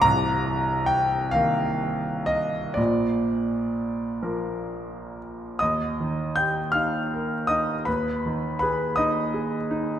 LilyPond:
<<
  \new Staff \with { instrumentName = "Grand piano" } { \time 12/8 \key ees \major \tempo 4. = 52 bes''4 g''8 f''4 ees''8 d''2~ d''8 r8 | <ees'' ees'''>4 <g'' g'''>8 <f'' f'''>4 <ees'' ees'''>8 <ces'' ces'''>4 <ces'' ces'''>8 <ees'' ees'''>4. | }
  \new Staff \with { instrumentName = "Grand piano" } { \time 12/8 \key ees \major <c,, c,>4. <ees bes bes'>4. <bes,, bes,>4. <f bes bes'>4. | ees,8 ees8 g'8 ees'8 bes'8 ees'8 ees,8 ees8 aes'8 ees'8 aes'8 ees'8 | }
>>